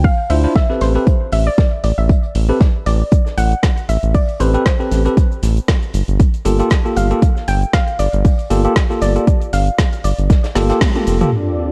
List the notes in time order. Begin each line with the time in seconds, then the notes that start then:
0.04 F5, kick, open hi-hat
0.30 D2 D4 E4 F4 C5 E5, closed hi-hat, open hi-hat
0.44 D4 E4 F4 C5
0.56 E5, kick, snare, closed hi-hat
0.70 C4 G4 A4 B4, snare
0.81 A1 C5, snare, closed hi-hat, open hi-hat
0.95 C4 G4 A4 B4, closed hi-hat
1.07 kick, closed hi-hat
1.32 A1 E5, snare, closed hi-hat, open hi-hat
1.47 D5
1.58 kick, snare, closed hi-hat
1.84 A1 D5, closed hi-hat, open hi-hat
1.98 A1 E5, closed hi-hat
2.09 kick, closed hi-hat
2.23 closed hi-hat
2.35 A1, closed hi-hat, open hi-hat
2.49 C4 G4 A4 B4, closed hi-hat
2.60 kick, snare, closed hi-hat
2.86 A1 D5, closed hi-hat, open hi-hat
3.11 kick, closed hi-hat, cabasa
3.26 snare, cabasa
3.38 A1 F#5, closed hi-hat, open hi-hat, cabasa
3.52 closed hi-hat, cabasa
3.63 kick, snare, closed hi-hat, cabasa
3.77 closed hi-hat, cabasa
3.89 A1 E5, closed hi-hat, open hi-hat, cabasa
4.03 A1, closed hi-hat, cabasa
4.14 D5, kick, closed hi-hat, open hi-hat, cabasa
4.29 closed hi-hat, cabasa
4.40 A1 C4 G4 A4 B4 C5, closed hi-hat, open hi-hat, cabasa
4.54 C4 G4 A4 B4, closed hi-hat, cabasa
4.66 C5, kick, snare, closed hi-hat, cabasa
4.80 C4 G4 A4 B4, snare, cabasa
4.91 A1, snare, closed hi-hat, open hi-hat, cabasa
5.05 C4 G4 A4 B4, closed hi-hat, cabasa
5.17 kick, closed hi-hat, cabasa
5.32 cabasa
5.43 A1, snare, closed hi-hat, open hi-hat, cabasa
5.57 closed hi-hat, cabasa
5.68 kick, snare, closed hi-hat, cabasa
5.83 closed hi-hat, cabasa
5.93 G1, closed hi-hat, open hi-hat, cabasa
6.08 G1, closed hi-hat, cabasa
6.20 kick, closed hi-hat, cabasa
6.34 closed hi-hat, cabasa
6.45 G1 A#3 F4 G4 A4, closed hi-hat, open hi-hat, cabasa
6.59 A#3 F4 G4 A4, closed hi-hat, cabasa
6.70 kick, snare, closed hi-hat, cabasa
6.85 A#3 F4 G4 A4, cabasa
6.97 G1 F5, closed hi-hat, open hi-hat, cabasa
7.11 A#3 F4 G4 A4, closed hi-hat, cabasa
7.22 kick, closed hi-hat, cabasa
7.36 snare, cabasa
7.48 G1 G5, closed hi-hat, open hi-hat, cabasa
7.62 closed hi-hat, cabasa
7.73 F5, kick, snare, closed hi-hat, cabasa
7.88 closed hi-hat, cabasa
7.99 G1 D5, closed hi-hat, open hi-hat, cabasa
8.13 G1, closed hi-hat, cabasa
8.24 kick, closed hi-hat, open hi-hat, cabasa
8.39 closed hi-hat, cabasa
8.50 G1 A#3 F4 G4 A4, closed hi-hat, open hi-hat, cabasa
8.64 A#3 F4 G4 A4, closed hi-hat, cabasa
8.76 kick, snare, closed hi-hat, cabasa
8.90 A#3 F4 G4 A4, snare, cabasa
9.01 G1 D5, snare, closed hi-hat, open hi-hat, cabasa
9.16 A#3 F4 G4 A4, closed hi-hat, cabasa
9.27 kick, closed hi-hat, cabasa
9.42 closed hi-hat, cabasa
9.53 G1 F5, snare, closed hi-hat, open hi-hat, cabasa
9.67 closed hi-hat, cabasa
9.78 kick, snare, closed hi-hat, cabasa
9.93 closed hi-hat, cabasa
10.04 G1 D5, closed hi-hat, open hi-hat, cabasa
10.18 G1, closed hi-hat, cabasa
10.30 kick, snare, closed hi-hat, cabasa
10.44 snare, closed hi-hat, cabasa
10.55 G1 A#3 F4 G4 A4, snare, closed hi-hat, open hi-hat, cabasa
10.69 A#3 F4 G4 A4, snare, closed hi-hat, cabasa
10.81 kick, snare, closed hi-hat, high tom, cabasa
10.95 A#3 F4 G4 A4, closed hi-hat, high tom, cabasa
11.07 F1, closed hi-hat, open hi-hat, cabasa
11.21 A#3 F4 G4 A4, closed hi-hat, mid tom, cabasa
11.32 C4 D4 F4 D5, crash, sub drop